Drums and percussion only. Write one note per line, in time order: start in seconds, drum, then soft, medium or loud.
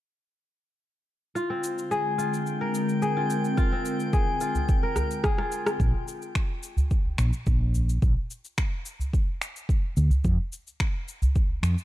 1.36 cabasa soft
1.64 cabasa medium
1.78 cabasa soft
1.91 cabasa soft
2.19 cabasa medium
2.34 cabasa soft
2.47 cabasa soft
2.74 cabasa medium
2.89 cabasa soft
3.02 cabasa soft
3.30 cabasa medium
3.44 cabasa soft
3.58 kick medium
3.58 cabasa soft
3.85 cabasa medium
4.00 cabasa soft
4.13 kick medium
4.13 cabasa soft
4.41 cabasa medium
4.55 udu medium
4.55 cabasa soft
4.69 kick loud
4.69 cabasa soft
4.96 cross-stick medium
4.96 udu medium
4.96 cabasa medium
5.11 cabasa soft
5.24 kick loud
5.24 cross-stick medium
5.24 cabasa soft
5.38 cross-stick medium
5.52 cabasa medium
5.66 cross-stick medium
5.66 cabasa soft
5.80 kick medium
5.80 cabasa soft
6.08 cabasa medium
6.22 cabasa soft
6.35 finger snap medium
6.35 kick loud
6.35 cabasa soft
6.63 cabasa medium
6.77 udu medium
6.77 cabasa soft
6.91 kick medium
6.91 cabasa soft
7.06 udu medium
7.18 finger snap medium
7.18 cabasa medium
7.33 cabasa soft
7.47 kick medium
7.47 cabasa soft
7.74 udu medium
7.74 cabasa medium
7.89 cabasa soft
8.02 kick loud
8.02 cabasa soft
8.31 cabasa medium
8.45 cabasa soft
8.58 finger snap medium
8.58 kick loud
8.58 cabasa soft
8.86 cabasa medium
8.99 udu medium
8.99 cabasa soft
9.13 kick loud
9.13 cabasa soft
9.42 finger snap medium
9.42 cabasa medium
9.56 cabasa soft
9.69 kick loud
9.69 cabasa soft
9.97 cabasa medium
10.10 udu medium
10.10 cabasa soft
10.24 kick loud
10.24 cabasa soft
10.52 cabasa medium
10.67 cabasa soft
10.80 finger snap medium
10.80 kick loud
10.80 cabasa soft
11.08 cabasa medium
11.22 udu medium
11.22 cabasa soft
11.36 kick loud
11.36 cabasa soft
11.49 udu medium
11.63 finger snap medium
11.63 cabasa medium
11.78 cabasa soft